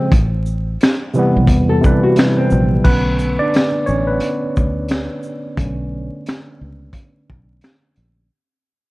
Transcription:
Already playing: C#3 F3 G#3 C4
0.12 A1, kick, closed hi-hat
0.46 shaker
0.81 finger snap, snare, closed hi-hat
1.14 C3 E3 G3, shaker
1.19 B3
1.36 B1
1.47 E2, kick, closed hi-hat
1.69 A4
1.81 C3 E3 G3, kick, shaker
1.86 B4
2.03 F#4
2.16 E4, finger snap, snare, closed hi-hat
2.38 C4
2.50 A#1, shaker
2.84 B1 D3 A3 B3 C#4 B4, kick, crash
3.19 closed hi-hat, shaker
3.39 D4 D5
3.54 finger snap, snare, closed hi-hat
3.86 A1 C#4 C#5, shaker
4.07 B3 B4
4.20 closed hi-hat
4.56 D2, kick, shaker
4.88 finger snap, snare, closed hi-hat
5.23 shaker
5.57 B1 D3 A3 C#4, kick, closed hi-hat
6.26 finger snap, snare, closed hi-hat
6.61 C#2
6.93 kick, closed hi-hat
7.30 B1, kick
7.61 finger snap, snare, closed hi-hat
7.96 A#1, closed hi-hat

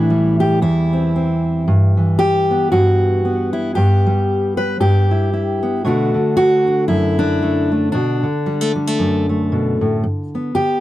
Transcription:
Already playing: A2 E3 D4 E4
0.10 G3
0.40 G4
0.62 E2 E4
0.93 C4
1.16 C4
1.68 G2
1.97 E3
2.19 G4
2.51 B3
2.72 G2 F#4
3.25 B3
3.53 E4
3.75 G2 G4
4.06 G3
4.57 B4
4.80 G2 G4
5.11 E4
5.33 E4
5.63 B3
5.85 B2 D3 A3 D4 F#4
6.14 D3
6.37 F#4
6.67 D4
6.88 F#2 E4
7.19 D4
7.42 A3
7.72 A3
7.92 B2 D4
8.23 D3
8.46 G3
8.61 A3
8.76 G3
8.87 A3
8.99 F#2
9.29 A3
9.52 B2
9.81 A2
10.04 G2
10.35 B3
10.55 D3 G4

